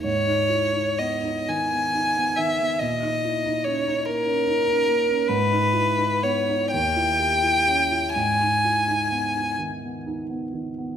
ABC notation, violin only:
X:1
M:6/8
L:1/8
Q:3/8=43
K:G#m
V:1 name="Violin"
c2 d g2 e | d2 c A3 | B2 c =g3 | g3 z3 |]